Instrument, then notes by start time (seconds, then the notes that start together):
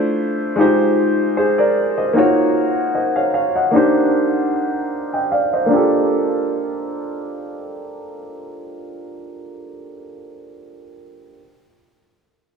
grand piano
Already playing: A3 D4 E4 F4 C5
0.56 G#3 D#4 F4 G4
0.61 C5
1.37 G#4 C5
1.58 A#4 D5
1.98 C5 D#5
2.13 A#3 D#4 F4 F#4
2.18 C#5
2.95 C5 D#5
3.16 C#5 F5
3.34 C#5 F5
3.55 D#5 F#5
3.71 A#3 D4 D#4 G4
3.76 C5
5.13 D#5 G5
5.32 D5 F5
5.53 C5 D#5
5.66 A#3 D4
5.71 F4 G4
5.76 A4